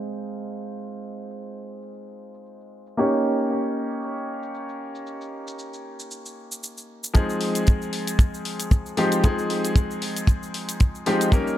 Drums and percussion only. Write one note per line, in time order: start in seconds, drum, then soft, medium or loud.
0.26 shaker medium
0.37 shaker medium
0.52 shaker soft
0.78 shaker medium
0.90 shaker soft
1.04 shaker soft
1.30 shaker medium
1.42 shaker soft
1.56 shaker soft
1.82 shaker medium
1.94 shaker soft
2.08 shaker soft
2.34 shaker medium
2.46 shaker soft
2.60 shaker soft
2.86 shaker medium
2.98 shaker soft
3.12 shaker soft
3.38 shaker medium
3.50 shaker soft
3.64 shaker soft
3.91 shaker medium
4.02 shaker soft
4.17 shaker soft
4.43 shaker medium
4.54 shaker soft
4.69 shaker soft
4.95 shaker medium
5.07 shaker soft
5.21 shaker soft
5.47 shaker medium
5.59 shaker soft
5.73 shaker soft
6.00 shaker medium
6.11 shaker soft
6.26 shaker soft
6.52 shaker medium
6.63 shaker medium
6.77 shaker soft
7.04 shaker medium
7.15 kick loud
7.15 closed hi-hat medium
7.15 shaker medium
7.29 shaker soft
7.41 open hi-hat medium
7.55 closed hi-hat medium
7.55 shaker medium
7.67 kick loud
7.67 closed hi-hat soft
7.67 shaker medium
7.82 shaker soft
7.93 open hi-hat medium
8.07 closed hi-hat medium
8.07 shaker medium
8.19 kick loud
8.19 closed hi-hat medium
8.19 shaker medium
8.34 shaker soft
8.45 open hi-hat loud
8.60 closed hi-hat medium
8.60 shaker medium
8.71 kick loud
8.71 closed hi-hat medium
8.71 shaker medium
8.86 shaker soft
8.97 open hi-hat medium
9.12 closed hi-hat medium
9.12 shaker medium
9.24 kick loud
9.24 closed hi-hat medium
9.24 shaker medium
9.39 shaker soft
9.50 open hi-hat loud
9.65 closed hi-hat medium
9.65 shaker medium
9.76 kick loud
9.76 closed hi-hat soft
9.76 shaker medium
9.91 shaker soft
10.02 open hi-hat medium
10.17 closed hi-hat medium
10.17 shaker medium
10.27 kick loud
10.27 closed hi-hat soft
10.27 shaker soft
10.43 shaker soft
10.54 open hi-hat loud
10.69 closed hi-hat medium
10.69 shaker medium
10.80 kick loud
10.80 closed hi-hat medium
10.80 shaker medium
10.95 shaker soft
11.06 open hi-hat medium
11.21 closed hi-hat medium
11.21 shaker medium
11.32 kick loud
11.32 closed hi-hat soft
11.32 shaker medium
11.47 shaker soft